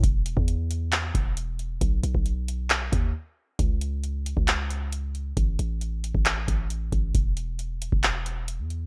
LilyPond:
<<
  \new Staff \with { instrumentName = "808-style bass" } { \clef bass \time 4/4 \key e \major \tempo 4 = 135 e,,8. e,4.~ e,16 e,,4. | b,,8 b,,16 b,,4.~ b,,16 dis,8 r4 | cis,4.~ cis,16 cis,2~ cis,16 | a,,8 a,,4~ a,,16 a,,8. a,,4 a,,8 |
e,,4.~ e,,16 e,,4. e,8. | }
  \new DrumStaff \with { instrumentName = "Drums" } \drummode { \time 4/4 <hh bd>8 hh16 bd16 hh8 hh8 <hc hh>8 <hh bd>8 hh8 hh8 | <hh bd>8 hh16 bd16 hh8 hh8 <hc hh>8 <hh bd>8 r4 | <hh bd>8 hh8 hh8 hh16 bd16 <hc hh>8 hh8 hh8 hh8 | <hh bd>8 hh8 hh8 hh16 bd16 <hc hh>8 <hh bd>8 hh8 <hh bd>8 |
<hh bd>8 hh8 hh8 hh16 bd16 <hc hh>8 hh8 hh8 hh8 | }
>>